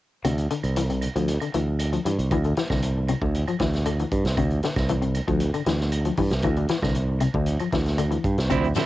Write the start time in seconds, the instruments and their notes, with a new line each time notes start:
0.25 fingered electric bass D2, clean electric guitar C3, closed hi-hat, claves
0.38 closed hi-hat
0.50 clean electric guitar D3, closed hi-hat
0.63 fingered electric bass C2, closed hi-hat, claves
0.76 clean electric guitar E3, closed hi-hat
0.90 clean electric guitar C3, closed hi-hat
1.01 closed hi-hat, claves
1.16 fingered electric bass D2, clean electric guitar F3, closed hi-hat
1.28 closed hi-hat
1.40 clean electric guitar D3, closed hi-hat, claves
1.54 fingered electric bass D2, clean electric guitar E3, closed hi-hat
1.79 closed hi-hat, claves
1.93 clean electric guitar F3, closed hi-hat
2.05 fingered electric bass G2, clean electric guitar E3, closed hi-hat
2.19 fingered electric bass C2, closed hi-hat
2.31 fingered electric bass D2, clean electric guitar E3, kick, closed hi-hat, claves
2.44 clean electric guitar D3, closed hi-hat
2.57 clean electric guitar E3, snare, closed hi-hat
2.70 fingered electric bass C2, clean electric guitar D3, kick, snare, claves
2.82 closed hi-hat
3.08 clean electric guitar C3, closed hi-hat, claves
3.22 fingered electric bass D2, clean electric guitar D3, kick
3.34 closed hi-hat
3.48 clean electric guitar F3, closed hi-hat, claves
3.59 fingered electric bass D2, clean electric guitar E3, kick, snare, closed hi-hat
3.74 snare, closed hi-hat
3.86 clean electric guitar D3, closed hi-hat, claves
3.99 clean electric guitar E3, closed hi-hat
4.12 fingered electric bass G2, kick, closed hi-hat
4.25 fingered electric bass C2, snare, closed hi-hat
4.37 fingered electric bass D2, clean electric guitar C3, kick, closed hi-hat, claves
4.50 closed hi-hat
4.63 clean electric guitar D3, snare, closed hi-hat
4.76 fingered electric bass C2, kick, snare, closed hi-hat, claves
4.88 clean electric guitar E3, closed hi-hat
5.02 clean electric guitar C3, closed hi-hat
5.15 closed hi-hat, claves
5.28 fingered electric bass D2, clean electric guitar F3, kick, closed hi-hat
5.40 closed hi-hat
5.54 clean electric guitar D3, closed hi-hat, claves
5.66 fingered electric bass D2, clean electric guitar E3, snare, closed hi-hat
5.80 snare
5.92 closed hi-hat, claves
6.05 clean electric guitar F3, closed hi-hat
6.17 fingered electric bass G2, clean electric guitar E3, kick, open hi-hat
6.30 fingered electric bass C2, snare, closed hi-hat
6.42 fingered electric bass D2, clean electric guitar E3, kick, closed hi-hat, claves
6.56 clean electric guitar D3, closed hi-hat
6.68 clean electric guitar E3, snare, closed hi-hat
6.82 fingered electric bass C2, clean electric guitar D3, kick, snare, claves
6.95 closed hi-hat
7.20 clean electric guitar C3, closed hi-hat, claves
7.34 fingered electric bass D2, clean electric guitar D3, kick
7.46 closed hi-hat
7.59 clean electric guitar F3, closed hi-hat, claves
7.72 fingered electric bass D2, clean electric guitar E3, kick, snare, closed hi-hat
7.86 snare, closed hi-hat
7.98 clean electric guitar D3, closed hi-hat, claves
8.11 clean electric guitar E3, closed hi-hat
8.24 fingered electric bass G2, kick, closed hi-hat
8.38 fingered electric bass C2, snare, closed hi-hat
8.50 fingered electric bass D2, clean electric guitar C3 F3 C4 E4, muted clean electric guitar stroke, kick, closed hi-hat, claves, shekere
8.64 closed hi-hat
8.75 clean electric guitar D3 F3 C4 E4 A4, snare, closed hi-hat, shekere